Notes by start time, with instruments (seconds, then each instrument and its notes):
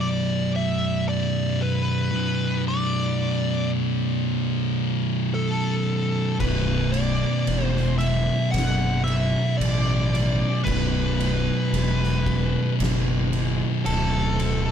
Already playing: distorted electric guitar B1 F#2 B2
0.01 lead electric guitar D5
0.56 lead electric guitar E5
1.09 lead electric guitar D5
1.62 lead electric guitar B4
2.12 distorted electric guitar B1 F#2 B2
2.68 lead electric guitar D5
5.34 lead electric guitar A4
6.40 fingered electric bass B0, distorted electric guitar B1 F#2 B2, lead electric guitar B4, kick, crash
6.92 lead electric guitar D5, crash
7.47 fingered electric bass E1, crash
7.64 lead electric guitar C5
7.77 snare
7.98 lead electric guitar E5, crash
8.51 fingered electric bass F#1, lead electric guitar F#5, crash
8.57 snare
9.04 lead electric guitar E5, crash
9.58 fingered electric bass A1, lead electric guitar D5, crash
10.15 crash
10.64 fingered electric bass B0, distorted electric guitar B1 F#2, lead electric guitar B4, kick, crash
10.69 distorted electric guitar B2
11.20 crash
11.73 fingered electric bass E1, crash
12.04 snare
12.26 kick, crash
12.80 fingered electric bass F#1, snare, crash
13.33 crash
13.86 fingered electric bass D1, lead electric guitar A4, crash
14.40 crash